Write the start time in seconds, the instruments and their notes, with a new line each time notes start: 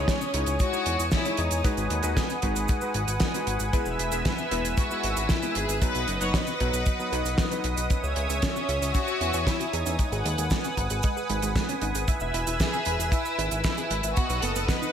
Already playing: electric grand piano G#3 D#4 E4 C#5, analog synth pad C#5 G#5 D#6
0.08 violin section C#4, kick, snare, closed hi-hat, cabasa
0.21 cabasa
0.34 analog synth bass C#2, electric grand piano G#3 D#4 E4 C#5, closed hi-hat
0.46 analog synth bass C#2, closed hi-hat, cabasa
0.59 violin section F#4, kick, closed hi-hat, cabasa
0.73 electric grand piano G#3 D#4 E4 C#5, cabasa
0.86 analog synth bass E2, closed hi-hat
0.99 analog synth bass E2, closed hi-hat, cabasa
1.11 violin section E4, kick, snare, closed hi-hat, cabasa
1.25 electric grand piano G#3 D#4 E4 C#5, closed hi-hat, cabasa
1.37 analog synth bass E2, violin section D#4, closed hi-hat
1.51 analog synth bass E2, closed hi-hat, cabasa
1.64 electric grand piano G#3 D#4 F#4 B4, analog synth pad B4 F#5, kick, closed hi-hat, cabasa
1.77 analog synth bass G#1, closed hi-hat, cabasa
1.90 analog synth bass D#2, closed hi-hat
2.03 analog synth bass D#2, electric grand piano G#3 D#4 F#4 B4, closed hi-hat, cabasa
2.17 kick, snare, closed hi-hat, cabasa
2.30 closed hi-hat, cabasa
2.42 analog synth bass G#1, electric grand piano G#3 D#4 F#4 B4, kick, closed hi-hat
2.56 analog synth bass G#1, closed hi-hat, cabasa
2.68 kick, closed hi-hat, cabasa
2.81 electric grand piano G#3 D#4 F#4 B4, cabasa
2.94 analog synth bass G#1, closed hi-hat
3.08 analog synth bass G#1, closed hi-hat, cabasa
3.20 kick, snare, closed hi-hat, cabasa
3.34 electric grand piano G#3 D#4 F#4 B4, closed hi-hat, cabasa
3.47 analog synth bass G#1, closed hi-hat
3.60 analog synth bass G#1, closed hi-hat, cabasa
3.73 electric grand piano G#3 B3 E4 B4, analog synth pad E5 E6, kick, closed hi-hat, cabasa
3.86 analog synth bass E1, cabasa
3.99 analog synth bass E1, closed hi-hat
4.12 analog synth bass E1, electric grand piano G#3 B3 E4 B4, closed hi-hat, cabasa
4.25 violin section B3, kick, snare, closed hi-hat, cabasa
4.38 cabasa
4.51 analog synth bass E1, electric grand piano G#3 B3 E4 B4, closed hi-hat
4.64 analog synth bass E1, closed hi-hat, cabasa
4.77 violin section F#4, kick, closed hi-hat, cabasa
4.91 electric grand piano G#3 B3 E4 B4, cabasa
5.03 analog synth bass G#1, closed hi-hat
5.17 analog synth bass G#1, closed hi-hat, cabasa
5.29 violin section E4, kick, snare, closed hi-hat, cabasa
5.42 electric grand piano G#3 B3 E4 B4, closed hi-hat, cabasa
5.55 analog synth bass G#1, violin section G#4, closed hi-hat
5.69 analog synth bass G#1, closed hi-hat, cabasa
5.82 electric grand piano F#3 B3 D#4 B4, violin section B4, analog synth pad B4 D#5 F#5 D#6, kick, closed hi-hat, cabasa
5.95 analog synth bass B1, closed hi-hat, cabasa
6.08 analog synth bass F#1, closed hi-hat
6.21 analog synth bass F#1, electric grand piano F#3 B3 D#4 B4, violin section C#5, closed hi-hat, cabasa
6.34 violin section B4, kick, snare, closed hi-hat, cabasa
6.47 closed hi-hat, cabasa
6.60 analog synth bass B1, electric grand piano F#3 B3 D#4 B4, kick, closed hi-hat
6.73 analog synth bass B1, closed hi-hat, cabasa
6.86 kick, closed hi-hat, cabasa
6.99 electric grand piano F#3 B3 D#4 B4, cabasa
7.12 analog synth bass B1, electric grand piano F#3 B3 D#4 B4, closed hi-hat
7.25 analog synth bass B1, closed hi-hat, cabasa
7.38 kick, snare, closed hi-hat, cabasa
7.51 electric grand piano F#3 B3 D#4 B4, closed hi-hat, cabasa
7.64 analog synth bass B1, closed hi-hat
7.77 analog synth bass B1, closed hi-hat, cabasa
7.90 synth arpeggio sound C#4, analog synth pad C#5 E5 G#5, kick, closed hi-hat, cabasa
8.04 analog synth bass C#2, synth arpeggio sound C#5, cabasa
8.16 analog synth bass C#2, synth arpeggio sound C#4, closed hi-hat
8.29 analog synth bass C#2, synth arpeggio sound C#4, closed hi-hat, cabasa
8.42 synth arpeggio sound C#4, violin section C#4, kick, snare, closed hi-hat, cabasa
8.56 synth arpeggio sound F#4, cabasa
8.69 analog synth bass C#2, synth arpeggio sound G#4, closed hi-hat
8.82 analog synth bass C#2, synth arpeggio sound C#4, closed hi-hat, cabasa
8.94 synth arpeggio sound C#4, violin section F#4, kick, closed hi-hat, cabasa
9.08 synth arpeggio sound C#5, cabasa
9.21 analog synth bass E2, synth arpeggio sound C#4, closed hi-hat
9.33 analog synth bass E2, synth arpeggio sound C#4, closed hi-hat, cabasa
9.47 synth arpeggio sound C#4, violin section E4, kick, snare, closed hi-hat, cabasa
9.60 synth arpeggio sound F#4, closed hi-hat, cabasa
9.73 analog synth bass E2, violin section D#4, synth arpeggio sound G#4, closed hi-hat
9.86 analog synth bass E2, synth arpeggio sound C#4, closed hi-hat, cabasa
9.99 synth arpeggio sound G#3, analog synth pad B4 F#5 D#6, kick, closed hi-hat, cabasa
10.12 analog synth bass G#1, synth arpeggio sound G#4, closed hi-hat, cabasa
10.25 analog synth bass D#2, synth arpeggio sound G#3, closed hi-hat
10.38 analog synth bass D#2, synth arpeggio sound G#3, closed hi-hat, cabasa
10.50 synth arpeggio sound G#3, kick, snare, closed hi-hat, cabasa
10.64 synth arpeggio sound C#4, closed hi-hat, cabasa
10.77 analog synth bass G#1, synth arpeggio sound D#4, kick, closed hi-hat
10.90 analog synth bass G#1, synth arpeggio sound G#3, closed hi-hat, cabasa
11.03 synth arpeggio sound G#3, kick, closed hi-hat, cabasa
11.17 synth arpeggio sound G#4, cabasa
11.29 analog synth bass G#1, synth arpeggio sound G#3, closed hi-hat
11.42 analog synth bass G#1, synth arpeggio sound G#3, closed hi-hat, cabasa
11.56 synth arpeggio sound G#3, kick, snare, closed hi-hat, cabasa
11.69 synth arpeggio sound C#4, closed hi-hat, cabasa
11.81 analog synth bass G#1, synth arpeggio sound D#4, closed hi-hat
11.95 analog synth bass G#1, synth arpeggio sound G#3, closed hi-hat, cabasa
12.08 synth arpeggio sound E4, analog synth pad B4 E5 E6, kick, closed hi-hat, cabasa
12.20 analog synth bass E1, synth arpeggio sound E5, cabasa
12.34 analog synth bass E1, synth arpeggio sound E4, closed hi-hat
12.47 analog synth bass E1, synth arpeggio sound E4, closed hi-hat, cabasa
12.60 synth arpeggio sound E4, violin section G#4, kick, snare, closed hi-hat, cabasa
12.73 synth arpeggio sound G#4, cabasa
12.85 analog synth bass E1, synth arpeggio sound B4, closed hi-hat
12.99 analog synth bass E1, synth arpeggio sound E4, closed hi-hat, cabasa
13.12 violin section E4, synth arpeggio sound E4, kick, closed hi-hat, cabasa
13.25 synth arpeggio sound E5, cabasa
13.38 analog synth bass G#1, synth arpeggio sound E4, closed hi-hat
13.51 analog synth bass G#1, synth arpeggio sound E4, closed hi-hat, cabasa
13.64 violin section E4, synth arpeggio sound E4, kick, snare, closed hi-hat, cabasa
13.77 synth arpeggio sound G#4, closed hi-hat, cabasa
13.91 analog synth bass G#1, synth arpeggio sound B4, closed hi-hat
14.03 analog synth bass G#1, synth arpeggio sound E4, closed hi-hat, cabasa
14.16 synth arpeggio sound B3, violin section F#4, analog synth pad B4 D#5 F#5 D#6, kick, closed hi-hat, cabasa
14.30 analog synth bass B1, synth arpeggio sound B4, closed hi-hat, cabasa
14.42 analog synth bass F#1, synth arpeggio sound B3, violin section A4, closed hi-hat
14.56 analog synth bass F#1, synth arpeggio sound B3, closed hi-hat, cabasa
14.69 synth arpeggio sound B3, violin section B4, kick, snare, closed hi-hat, cabasa
14.82 synth arpeggio sound D#4, cabasa